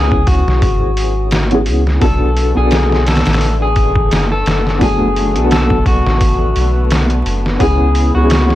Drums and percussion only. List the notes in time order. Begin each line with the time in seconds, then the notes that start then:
0.12 kick
0.27 kick, open hi-hat
0.48 snare
0.62 kick, open hi-hat
0.97 open hi-hat
1.31 snare, open hi-hat
1.51 closed hi-hat
1.66 open hi-hat
1.87 snare
2.02 kick, open hi-hat
2.37 open hi-hat
2.71 snare, open hi-hat
2.92 snare
3.06 snare, open hi-hat
3.16 snare, open hi-hat
3.25 snare, open hi-hat
3.33 snare, open hi-hat
3.41 open hi-hat
3.76 kick, open hi-hat
3.96 kick
4.11 snare, open hi-hat
4.46 snare, open hi-hat
4.67 snare
4.81 kick, open hi-hat
5.16 open hi-hat
5.36 closed hi-hat
5.51 snare, open hi-hat
5.70 kick
5.86 kick, open hi-hat
6.06 snare
6.21 kick, open hi-hat
6.56 open hi-hat
6.91 snare, open hi-hat
7.10 closed hi-hat
7.26 open hi-hat
7.46 snare
7.60 kick, open hi-hat
7.95 open hi-hat
8.30 snare, open hi-hat
8.50 snare